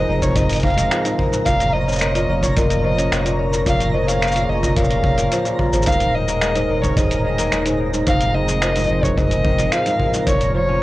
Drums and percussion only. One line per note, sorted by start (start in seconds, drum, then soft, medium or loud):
0.22 kick medium
0.22 cabasa medium
0.36 kick loud
0.36 closed hi-hat medium
0.36 cabasa medium
0.50 closed hi-hat soft
0.50 cabasa soft
0.52 closed hi-hat soft
0.52 cabasa soft
0.55 closed hi-hat soft
0.55 cabasa soft
0.57 cabasa soft
0.59 closed hi-hat soft
0.59 cabasa soft
0.61 kick loud
0.61 closed hi-hat soft
0.61 cabasa soft
0.67 closed hi-hat soft
0.70 closed hi-hat soft
0.74 closed hi-hat soft
0.78 closed hi-hat soft
0.78 cabasa medium
0.91 finger snap loud
0.91 closed hi-hat medium
0.91 cabasa medium
1.05 closed hi-hat soft
1.05 cabasa soft
1.19 kick medium
1.33 cabasa medium
1.46 kick loud
1.46 closed hi-hat medium
1.46 cabasa medium
1.60 closed hi-hat soft
1.60 cabasa soft
1.89 cabasa soft
1.92 cabasa soft
1.96 cabasa medium
1.99 finger snap loud
1.99 closed hi-hat medium
1.99 cabasa medium
2.02 cabasa medium
2.15 closed hi-hat soft
2.15 cabasa soft
2.43 kick medium
2.43 cabasa medium
2.57 kick loud
2.57 closed hi-hat medium
2.57 cabasa medium
2.70 closed hi-hat soft
2.70 cabasa soft
2.98 closed hi-hat soft
2.98 cabasa medium
3.12 finger snap loud
3.12 closed hi-hat medium
3.12 cabasa medium
3.26 closed hi-hat soft
3.26 cabasa soft
3.53 cabasa medium
3.66 kick loud
3.66 closed hi-hat medium
3.66 cabasa medium
3.80 closed hi-hat soft
3.80 cabasa soft
4.08 closed hi-hat soft
4.08 cabasa medium
4.22 finger snap loud
4.22 closed hi-hat medium
4.22 cabasa soft
4.27 cabasa soft
4.31 cabasa soft
4.36 closed hi-hat soft
4.36 cabasa soft
4.63 kick medium
4.63 cabasa medium
4.76 kick loud
4.76 closed hi-hat medium
4.76 cabasa medium
4.84 cabasa soft
4.90 closed hi-hat soft
5.04 kick medium
5.18 closed hi-hat soft
5.18 cabasa medium
5.32 closed hi-hat medium
5.32 cabasa medium
5.45 closed hi-hat soft
5.45 cabasa soft
5.59 kick medium
5.73 cabasa medium
5.82 closed hi-hat medium
5.82 cabasa medium
5.87 kick loud
5.87 cabasa medium
5.92 cabasa soft
6.00 closed hi-hat soft
6.00 cabasa soft
6.28 cabasa medium
6.41 finger snap loud
6.41 closed hi-hat medium
6.41 cabasa medium
6.56 closed hi-hat soft
6.56 cabasa soft
6.84 kick medium
6.84 cabasa medium
6.97 kick loud
6.97 closed hi-hat medium
6.97 cabasa medium
7.11 closed hi-hat soft
7.11 cabasa soft
7.38 closed hi-hat soft
7.38 cabasa medium
7.52 finger snap loud
7.52 closed hi-hat medium
7.52 cabasa medium
7.66 closed hi-hat soft
7.66 cabasa soft
7.94 cabasa medium
8.07 kick loud
8.07 closed hi-hat medium
8.07 cabasa medium
8.21 closed hi-hat soft
8.21 cabasa soft
8.48 cabasa medium
8.62 finger snap loud
8.62 closed hi-hat medium
8.62 cabasa medium
8.76 closed hi-hat soft
8.76 cabasa soft
8.79 cabasa soft
8.81 cabasa soft
8.83 cabasa soft
8.86 cabasa soft
9.03 kick medium
9.03 cabasa medium
9.17 kick loud
9.17 closed hi-hat medium
9.17 cabasa medium
9.31 closed hi-hat soft
9.31 cabasa soft
9.45 kick loud
9.59 closed hi-hat soft
9.59 cabasa medium
9.72 finger snap medium
9.72 closed hi-hat medium
9.72 cabasa medium
9.86 closed hi-hat soft
9.86 cabasa soft
10.00 kick medium
10.14 cabasa medium
10.27 kick loud
10.27 closed hi-hat medium
10.27 cabasa medium
10.41 closed hi-hat soft
10.41 cabasa soft